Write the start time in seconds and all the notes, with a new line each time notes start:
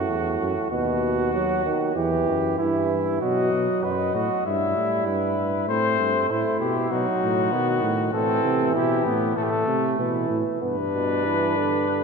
Already playing: A2 F#4
0.09 E2
0.41 F#2
0.71 D#2 B2 F#4
1.33 F#3
1.65 D#3
1.96 E2 E3 G4
2.28 F#2
2.58 G2 E3 E4
3.21 B2 F#3 F#4 D#5
3.53 B2
3.84 F#2 B4 D#5
3.91 C5
3.98 D#5
4.15 A2 F#4
4.46 G2 G3 E4 E5
4.76 A2
5.07 G2 B4
5.68 A2 A3 C4 C5
5.99 G2
6.30 A2 E4 C5
6.60 B2 G4
6.91 B2 F#3 D#4 F#4
7.22 A2
7.52 B2 D#3 B3
7.82 A2
8.13 A2 E3 C4 A4
8.44 C3
8.75 B2 E4 G4
9.05 A2 B3
9.37 A2 A3 A4
9.44 G4
9.50 A4
9.67 C3
9.99 B2 E3 E4
10.30 A2
10.62 G2 B3 D4 B4
10.94 B2
11.26 E3
11.57 D3
11.88 D3